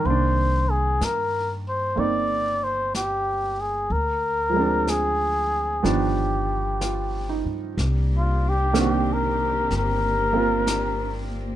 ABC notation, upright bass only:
X:1
M:4/4
L:1/8
Q:"Swing" 1/4=62
K:Cm
V:1 name="Upright bass" clef=bass
C,,2 G,,2 G,,,4 | D,,4 G,,,3 G,, | C,,4 G,,,4 |]